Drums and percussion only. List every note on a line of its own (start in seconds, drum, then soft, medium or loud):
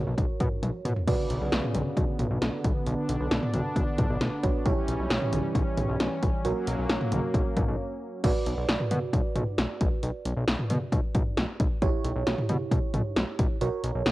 0.18 kick medium
0.18 closed hi-hat medium
0.40 kick medium
0.40 closed hi-hat medium
0.40 mid tom medium
0.63 closed hi-hat medium
0.63 high tom medium
0.85 closed hi-hat medium
0.85 mid tom medium
0.96 floor tom medium
1.07 kick loud
1.07 closed hi-hat medium
1.07 crash medium
1.30 closed hi-hat medium
1.52 snare loud
1.52 closed hi-hat medium
1.64 mid tom medium
1.75 closed hi-hat medium
1.75 mid tom medium
1.97 kick medium
1.97 closed hi-hat medium
2.19 closed hi-hat medium
2.19 mid tom medium
2.42 snare loud
2.42 closed hi-hat medium
2.64 kick loud
2.64 closed hi-hat medium
2.87 closed hi-hat medium
3.09 closed hi-hat medium
3.31 snare loud
3.31 closed hi-hat medium
3.43 mid tom medium
3.54 closed hi-hat medium
3.54 mid tom medium
3.76 kick medium
3.76 closed hi-hat medium
3.98 kick medium
3.98 closed hi-hat medium
3.98 mid tom medium
4.21 snare loud
4.21 closed hi-hat medium
4.44 kick loud
4.44 closed hi-hat medium
4.66 kick loud
4.66 closed hi-hat medium
4.88 closed hi-hat medium
5.10 snare loud
5.10 closed hi-hat medium
5.22 mid tom medium
5.33 closed hi-hat medium
5.33 mid tom medium
5.55 kick medium
5.55 closed hi-hat medium
5.77 closed hi-hat medium
5.77 mid tom medium
6.00 snare loud
6.00 closed hi-hat medium
6.23 kick medium
6.23 closed hi-hat medium
6.45 closed hi-hat medium
6.67 closed hi-hat medium
6.89 snare loud
6.89 closed hi-hat medium
7.01 mid tom loud
7.12 closed hi-hat medium
7.12 mid tom loud
7.34 kick medium
7.34 closed hi-hat medium
7.57 kick medium
7.57 closed hi-hat medium
7.57 mid tom medium
8.24 kick loud
8.24 closed hi-hat medium
8.24 crash loud
8.46 closed hi-hat medium
8.69 snare loud
8.69 closed hi-hat medium
8.80 mid tom loud
8.91 closed hi-hat medium
8.91 mid tom medium
9.13 kick medium
9.13 closed hi-hat medium
9.36 closed hi-hat medium
9.36 mid tom loud
9.58 snare loud
9.58 closed hi-hat medium
9.81 kick loud
9.81 closed hi-hat medium
10.03 closed hi-hat medium
10.25 closed hi-hat medium
10.48 snare loud
10.48 closed hi-hat medium
10.59 mid tom medium
10.70 closed hi-hat medium
10.70 mid tom loud
10.92 kick loud
10.92 closed hi-hat medium
11.15 kick loud
11.15 closed hi-hat medium
11.15 mid tom medium
11.37 snare loud
11.37 closed hi-hat medium
11.60 kick loud
11.60 closed hi-hat medium
11.82 kick loud
11.82 closed hi-hat medium
12.05 closed hi-hat medium
12.27 snare loud
12.27 closed hi-hat medium
12.38 mid tom loud
12.49 closed hi-hat medium
12.49 mid tom loud
12.71 kick medium
12.71 closed hi-hat medium
12.94 closed hi-hat medium
12.94 mid tom medium
13.16 snare loud
13.16 closed hi-hat medium
13.39 kick loud
13.39 closed hi-hat medium
13.61 closed hi-hat medium
13.84 closed hi-hat medium
14.06 snare loud
14.06 closed hi-hat medium